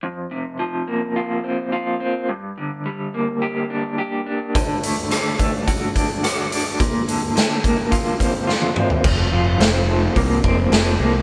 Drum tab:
CC |----------------|----------------|----------------|----------------|
HH |----------------|----------------|x-x-x-x-x-x-x-x-|x-x-x-x-x-x-----|
SD |----------------|----------------|----r-------r---|----o-------o---|
T1 |----------------|----------------|----------------|-------------o--|
T2 |----------------|----------------|----------------|--------------o-|
FT |----------------|----------------|----------------|---------------o|
BD |----------------|----------------|o-----o-o-o-----|o-----o-o-o-----|

CC |x---------------|
HH |----o---o---o---|
SD |----o-------o---|
T1 |----------------|
T2 |----------------|
FT |----------------|
BD |o-------o-o-----|